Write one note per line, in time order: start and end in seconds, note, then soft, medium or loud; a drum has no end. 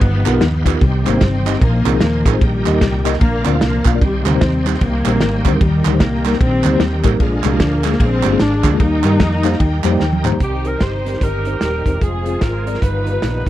0.00 0.23 G1 loud
0.00 0.62 G2 medium
0.00 0.62 D#3 medium
0.00 0.62 F3 medium
0.00 0.67 B3 loud
0.00 3.18 D#4 medium
0.00 0.81 G4 medium
0.00 0.81 B4 medium
0.00 0.81 F5 medium
0.00 kick loud
0.00 ride medium
0.25 0.40 B1 medium
0.25 0.31 B3 medium
0.25 0.31 D#4 medium
0.25 0.31 F4 medium
0.25 0.31 G4 medium
0.25 0.31 A#4 medium
0.25 clap loud
0.25 ride medium
0.32 0.43 B3 medium
0.32 0.43 D#4 medium
0.32 0.44 F4 medium
0.32 0.44 G4 medium
0.32 0.44 A#4 loud
0.41 0.76 D#2 loud
0.41 snare loud
0.41 ride medium
0.65 0.70 B3 medium
0.65 0.70 D#4 medium
0.65 0.71 F4 medium
0.65 0.71 G4 medium
0.65 0.71 B4 medium
0.65 kick loud
0.65 clap loud
0.65 ride medium
0.73 0.81 B3 medium
0.73 0.82 D#4 medium
0.73 0.82 F4 medium
0.73 0.82 G4 medium
0.73 0.82 A#4 medium
0.81 1.03 C2 loud
0.81 1.42 C3 medium
0.81 1.58 C3 medium
0.81 1.21 D#3 medium
0.81 1.05 G3 medium
0.81 1.61 G4 medium
0.81 1.61 C5 medium
0.81 1.61 G5 medium
0.81 kick loud
0.81 ride medium
1.05 1.20 G#1 loud
1.05 1.10 G3 medium
1.05 1.22 A#3 loud
1.05 1.10 C4 medium
1.05 1.11 D#4 medium
1.05 1.11 G4 medium
1.05 1.11 C5 medium
1.05 clap medium
1.05 ride medium
1.13 1.24 G3 medium
1.13 1.24 C4 medium
1.13 1.24 D#4 medium
1.13 1.24 G4 medium
1.13 1.24 C5 medium
1.21 1.56 G1 medium
1.21 1.59 D#3 medium
1.21 1.59 G3 medium
1.21 1.62 C4 medium
1.21 kick medium
1.21 snare loud
1.21 ride medium
1.45 1.55 G3 medium
1.45 1.55 C4 medium
1.45 1.55 D#4 medium
1.45 1.56 G4 medium
1.45 1.56 D#5 medium
1.45 clap loud
1.45 ride medium
1.54 snare soft
1.60 1.83 A#1 loud
1.60 2.22 A#2 medium
1.60 2.37 D#3 medium
1.60 2.37 F3 medium
1.60 2.01 A#3 loud
1.60 3.99 A#4 medium
1.60 2.41 C5 medium
1.60 2.41 G#5 medium
1.60 kick loud
1.60 ride medium
1.85 1.99 C2 medium
1.85 1.90 C4 medium
1.85 1.90 D#4 medium
1.85 1.91 F4 medium
1.85 1.91 G#4 medium
1.85 1.91 A#4 medium
1.85 clap loud
1.85 ride medium
1.92 2.03 C4 medium
1.92 2.03 D#4 medium
1.92 2.04 F4 medium
1.92 2.04 G#4 medium
1.92 2.04 A#4 medium
2.01 2.23 D#2 loud
2.01 2.25 A#3 loud
2.01 snare loud
2.01 ride medium
2.25 2.39 A1 loud
2.25 2.42 G#3 medium
2.25 2.30 C4 medium
2.25 2.31 D#4 medium
2.25 2.31 F4 medium
2.25 2.31 G#4 medium
2.25 2.31 A#4 medium
2.25 kick loud
2.25 clap medium
2.25 ride medium
2.33 2.41 C4 medium
2.33 2.41 D#4 medium
2.33 2.41 F4 medium
2.33 2.42 G#4 medium
2.33 2.42 C5 medium
2.40 2.63 A#1 loud
2.40 3.02 A#2 medium
2.40 3.17 A#2 medium
2.40 3.17 D#3 medium
2.40 3.21 G3 loud
2.40 3.20 G4 medium
2.40 3.20 G5 medium
2.40 kick loud
2.40 ride medium
2.65 2.80 D#2 loud
2.65 2.70 A#3 medium
2.65 2.70 D#4 medium
2.65 2.71 G4 medium
2.65 2.71 A#4 medium
2.65 2.71 D#5 medium
2.65 clap medium
2.65 ride medium
2.73 2.83 A#3 medium
2.73 2.84 D#4 medium
2.73 2.84 G4 medium
2.73 2.84 A#4 medium
2.73 2.84 D#5 medium
2.81 3.15 C2 loud
2.81 kick medium
2.81 snare loud
2.81 ride medium
3.04 3.14 A#3 medium
3.04 3.14 D#4 medium
3.04 3.15 G4 medium
3.04 3.15 A#4 medium
3.04 3.15 D#5 loud
3.04 clap loud
3.04 ride medium
3.13 snare soft
3.20 3.42 A#1 loud
3.20 3.82 A#2 medium
3.20 3.60 D3 medium
3.20 3.60 F3 medium
3.20 3.44 A#3 loud
3.20 4.00 D4 medium
3.20 4.00 F4 medium
3.20 4.00 F5 medium
3.20 kick loud
3.20 ride medium
3.44 3.59 D2 medium
3.44 3.50 A#3 medium
3.44 3.60 C4 medium
3.44 3.50 D4 medium
3.44 3.51 F4 medium
3.44 3.51 A#4 medium
3.44 3.51 D5 medium
3.44 clap loud
3.44 ride soft
3.53 3.64 A#3 medium
3.53 3.64 D4 medium
3.53 3.64 F4 medium
3.53 3.64 A#4 medium
3.53 3.65 F5 medium
3.60 3.83 C2 medium
3.60 3.98 D3 medium
3.60 3.98 F3 medium
3.60 3.91 A#3 loud
3.60 snare loud
3.60 ride medium
3.85 3.99 B1 medium
3.85 3.90 A#3 medium
3.85 3.90 D4 medium
3.85 3.91 F4 medium
3.85 3.91 A#4 medium
3.85 3.91 F5 medium
3.85 kick loud
3.85 clap loud
3.85 ride medium
3.94 4.01 A#3 medium
3.94 4.02 D4 medium
3.94 4.02 F4 medium
3.94 4.02 A#4 medium
3.94 4.02 D5 medium
4.00 4.23 C2 loud
4.00 4.77 C3 medium
4.00 4.62 C3 medium
4.00 4.40 D#3 medium
4.00 4.24 G3 loud
4.00 7.18 D#4 medium
4.00 7.17 G4 medium
4.00 5.60 C5 medium
4.00 7.18 G5 medium
4.00 kick loud
4.00 ride medium
4.25 4.39 D2 medium
4.25 4.31 G3 medium
4.25 4.41 A#3 medium
4.25 4.31 C4 medium
4.25 4.31 D#4 medium
4.25 4.31 G4 medium
4.25 4.31 C5 medium
4.25 clap loud
4.25 ride medium
4.33 4.43 G3 medium
4.33 4.44 C4 medium
4.33 4.44 D#4 medium
4.33 4.44 G4 medium
4.33 4.44 C5 medium
4.41 4.75 D#2 medium
4.41 4.81 D#3 medium
4.41 4.81 G3 medium
4.41 4.81 C4 loud
4.41 kick loud
4.41 snare loud
4.41 ride medium
4.66 4.75 G3 medium
4.66 4.75 C4 medium
4.66 4.75 D#4 medium
4.66 4.76 G4 medium
4.66 4.76 C5 medium
4.66 clap loud
4.66 ride medium
4.74 snare soft
4.81 5.02 C2 loud
4.81 5.57 D#3 medium
4.81 5.57 G3 medium
4.81 5.61 A#3 loud
4.81 kick loud
4.81 ride medium
5.06 5.19 A#1 medium
5.06 5.10 G3 medium
5.06 5.11 C4 medium
5.06 5.11 D#4 medium
5.06 5.11 G4 medium
5.06 5.11 C5 medium
5.06 clap loud
5.06 ride medium
5.14 5.24 G3 medium
5.14 5.24 C4 medium
5.14 5.24 D#4 medium
5.14 5.24 G4 medium
5.14 5.25 A#4 medium
5.20 5.42 G#1 loud
5.20 snare loud
5.20 ride medium
5.45 5.58 D2 loud
5.45 5.50 G3 medium
5.45 5.50 C4 medium
5.45 5.51 D#4 medium
5.45 5.51 G4 medium
5.45 5.51 C5 medium
5.45 kick medium
5.45 clap medium
5.45 ride medium
5.54 5.61 G3 medium
5.54 5.61 C4 medium
5.54 5.61 D#4 medium
5.54 5.62 G4 medium
5.54 5.62 A#4 medium
5.61 5.82 D#2 loud
5.61 6.37 A#2 medium
5.61 5.98 D#3 medium
5.61 6.22 D#3 medium
5.61 5.98 G3 loud
5.61 10.37 A#4 medium
5.61 kick loud
5.61 ride medium
5.85 5.99 D2 medium
5.85 5.90 G3 medium
5.85 5.91 A#3 medium
5.85 5.91 D#4 medium
5.85 5.91 G4 medium
5.85 5.91 A#4 medium
5.85 clap loud
5.85 ride medium
5.93 6.03 G3 medium
5.93 6.03 A#3 medium
5.93 6.04 D#4 medium
5.93 6.04 G4 medium
5.93 6.04 C5 medium
5.99 6.35 C2 medium
5.99 6.40 D#3 medium
5.99 6.39 G3 medium
5.99 6.40 A#3 loud
5.99 kick loud
5.99 snare loud
5.99 ride medium
6.25 6.35 G3 medium
6.25 6.35 A#3 medium
6.25 6.35 D#4 medium
6.25 6.35 G4 medium
6.25 6.35 A#4 medium
6.25 snare soft
6.25 clap medium
6.25 ride medium
6.33 snare soft
6.40 6.62 A#1 medium
6.40 7.17 D#3 loud
6.40 7.16 G3 medium
6.40 7.01 C4 loud
6.40 kick loud
6.40 ride medium
6.64 6.78 D2 loud
6.64 6.70 G3 medium
6.64 6.70 A#3 medium
6.64 6.70 D#4 medium
6.64 6.70 G4 medium
6.64 6.70 C5 medium
6.64 clap loud
6.64 ride medium
6.72 6.83 G3 medium
6.72 6.83 A#3 medium
6.72 6.83 D#4 medium
6.72 6.83 G4 medium
6.72 6.83 C5 medium
6.80 7.01 D#2 loud
6.80 snare loud
6.80 ride medium
7.04 7.18 A1 loud
7.04 7.09 G3 loud
7.04 7.09 A#3 medium
7.04 7.09 D#4 medium
7.04 7.09 G4 medium
7.04 7.10 A#4 medium
7.04 kick loud
7.04 clap medium
7.04 ride medium
7.12 7.20 G3 medium
7.12 7.20 A#3 medium
7.12 7.20 D#4 medium
7.12 7.21 A#4 medium
7.19 7.41 A#1 loud
7.19 7.81 A#2 medium
7.19 7.44 D3 medium
7.19 7.44 F3 medium
7.19 7.43 G#3 medium
7.19 8.79 D4 medium
7.19 8.78 G#4 medium
7.19 8.78 F5 medium
7.19 kick loud
7.19 ride medium
7.44 7.58 C2 loud
7.44 8.21 D3 medium
7.44 7.99 F3 medium
7.44 7.49 G#3 medium
7.44 8.00 A#3 loud
7.44 7.50 A#3 medium
7.44 7.50 D4 medium
7.44 7.50 F4 medium
7.44 7.50 G#4 medium
7.44 clap medium
7.44 ride medium
7.51 7.62 G#3 medium
7.51 7.62 A#3 medium
7.51 7.62 D4 medium
7.51 7.63 F4 medium
7.51 7.63 G4 medium
7.60 7.94 D2 medium
7.60 kick loud
7.60 snare loud
7.60 ride medium
7.83 7.93 G#3 medium
7.83 7.94 A#3 medium
7.83 7.94 D4 medium
7.83 7.94 F4 medium
7.83 7.94 G#4 medium
7.83 snare soft
7.83 clap medium
7.83 ride medium
7.93 snare soft
8.00 8.21 A#1 loud
8.00 8.39 F3 medium
8.00 8.38 G#3 medium
8.00 8.40 C4 loud
8.00 kick loud
8.00 ride medium
8.23 8.38 G1 medium
8.23 8.28 G#3 medium
8.23 8.28 A#3 medium
8.23 8.29 D4 medium
8.23 8.29 F4 medium
8.23 8.29 G4 medium
8.23 clap loud
8.23 ride medium
8.31 8.42 G#3 medium
8.31 8.42 A#3 medium
8.31 8.42 D4 medium
8.31 8.42 F4 medium
8.31 8.43 G#4 medium
8.39 8.61 G#1 medium
8.39 8.77 F3 medium
8.39 8.77 G#3 medium
8.39 8.80 D4 loud
8.39 snare loud
8.39 ride medium
8.63 8.77 D2 medium
8.63 8.69 G#3 medium
8.63 8.69 A#3 medium
8.63 8.69 D4 medium
8.63 8.69 F4 medium
8.63 8.69 G#4 medium
8.63 kick loud
8.63 clap loud
8.63 ride medium
8.71 8.80 G#3 medium
8.71 8.80 A#3 medium
8.71 8.80 D4 medium
8.71 8.80 F4 medium
8.71 8.81 G#4 medium
8.79 9.01 D#2 loud
8.79 9.41 D#3 medium
8.79 9.96 G3 medium
8.79 9.96 A#3 medium
8.79 9.96 D#4 loud
8.79 10.39 D#4 medium
8.79 10.39 G4 medium
8.79 10.39 G5 medium
8.79 kick loud
8.79 ride medium
9.04 9.18 G2 loud
9.04 9.09 G3 medium
9.04 9.09 A#3 medium
9.04 9.09 D#4 medium
9.04 9.10 G4 medium
9.04 9.10 A#4 medium
9.04 clap loud
9.04 ride medium
9.11 9.22 G3 medium
9.11 9.22 A#3 medium
9.11 9.22 D#4 medium
9.11 9.23 G4 medium
9.11 9.23 A#4 medium
9.20 9.54 F2 medium
9.20 kick loud
9.20 snare loud
9.20 ride medium
9.43 9.53 G3 medium
9.43 9.54 A#3 medium
9.43 9.54 D#4 medium
9.43 9.54 G4 medium
9.43 9.54 C5 loud
9.43 9.59 F5 medium
9.43 snare soft
9.43 clap medium
9.43 ride medium
9.53 snare soft
9.60 9.81 D#2 loud
9.60 9.97 G5 medium
9.60 kick loud
9.60 ride medium
9.84 9.98 F2 loud
9.84 9.89 G3 medium
9.84 9.89 A#3 medium
9.84 9.89 D#4 medium
9.84 9.90 G4 medium
9.84 9.90 C5 loud
9.84 clap loud
9.84 ride medium
9.91 10.02 G3 medium
9.91 10.02 A#3 medium
9.91 10.02 D#4 medium
9.91 10.03 G4 medium
9.91 10.03 C5 medium
9.99 10.35 D#2 medium
9.99 10.23 G5 medium
9.99 snare medium
10.13 high tom medium
10.24 10.29 G3 medium
10.24 10.29 A#3 medium
10.24 10.30 D#4 medium
10.24 10.30 G4 medium
10.24 10.30 C5 loud
10.24 10.39 A#5 medium
10.24 clap medium
10.24 mid tom loud
10.32 10.40 G3 medium
10.32 10.40 A#3 medium
10.32 10.41 G4 medium
10.32 floor tom medium
10.39 10.74 C2 medium
10.39 11.01 C3 soft
10.39 11.99 D#3 medium
10.39 12.00 D#3 medium
10.39 11.99 G3 medium
10.39 12.00 G3 medium
10.39 11.99 C4 medium
10.39 12.79 C4 medium
10.39 11.17 C4 medium
10.39 11.99 D#4 medium
10.39 10.79 D#4 medium
10.39 12.00 G4 medium
10.39 10.64 G4 medium
10.39 10.69 G4 medium
10.39 kick loud
10.39 closed hi-hat medium
10.65 10.75 C4 medium
10.65 10.75 D#4 soft
10.65 10.75 G4 medium
10.65 10.81 A#4 medium
10.65 10.84 A#4 medium
10.65 10.75 C5 medium
10.65 closed hi-hat medium
10.79 11.15 G1 medium
10.79 11.18 D#4 medium
10.79 11.19 G4 medium
10.79 11.20 C5 medium
10.79 11.25 C5 medium
10.79 kick medium
10.79 snare loud
10.79 closed hi-hat medium
11.06 11.15 C4 medium
11.06 11.15 D#4 medium
11.06 11.15 G4 medium
11.06 11.15 A#4 medium
11.06 snare soft
11.06 closed hi-hat medium
11.14 snare soft
11.19 11.55 G1 medium
11.19 11.60 D#4 medium
11.19 11.60 G4 medium
11.19 11.57 A#4 loud
11.19 kick loud
11.19 closed hi-hat medium
11.24 12.03 A#4 loud
11.45 11.55 C4 medium
11.45 11.55 D#4 medium
11.45 11.55 G4 medium
11.45 11.56 C5 medium
11.45 closed hi-hat medium
11.61 11.82 D#1 medium
11.61 11.98 D#4 medium
11.61 11.99 G4 medium
11.61 11.98 A#4 medium
11.61 snare medium
11.61 closed hi-hat medium
11.86 11.99 E1 medium
11.86 11.95 C4 medium
11.86 11.95 D#4 medium
11.86 11.96 G4 medium
11.86 11.96 C5 medium
11.86 kick medium
11.86 closed hi-hat medium
12.01 12.36 F1 medium
12.01 12.81 F3 medium
12.01 13.49 F3 medium
12.01 12.81 G#3 medium
12.01 12.78 C4 medium
12.01 12.81 C4 medium
12.01 12.81 F4 medium
12.01 12.78 F4 medium
12.01 12.41 G#4 medium
12.01 12.81 G#4 medium
12.01 12.44 G#4 medium
12.01 kick medium
12.01 closed hi-hat medium
12.26 12.35 C4 medium
12.26 12.36 F4 medium
12.26 12.36 G#4 medium
12.26 12.36 C5 medium
12.26 closed hi-hat medium
12.41 12.76 G#1 medium
12.41 12.65 A#4 medium
12.41 12.83 A#4 medium
12.41 kick medium
12.41 snare medium
12.41 closed hi-hat medium
12.66 12.75 C4 medium
12.66 12.76 F4 medium
12.66 12.76 G#4 medium
12.66 12.80 A#4 medium
12.66 12.76 D5 medium
12.66 closed hi-hat medium
12.74 snare soft
12.81 13.16 G1 medium
12.81 13.43 G2 soft
12.81 13.49 D#3 medium
12.81 13.49 G3 medium
12.81 13.49 B3 medium
12.81 13.49 D#4 medium
12.81 13.49 F4 medium
12.81 13.46 B4 loud
12.81 13.47 B4 loud
12.81 kick loud
12.81 closed hi-hat medium
13.06 13.15 D#4 medium
13.06 13.16 F4 medium
13.06 13.16 G4 medium
13.06 13.16 B4 medium
13.06 closed hi-hat medium
13.22 13.44 A#1 medium
13.22 snare loud
13.22 closed hi-hat medium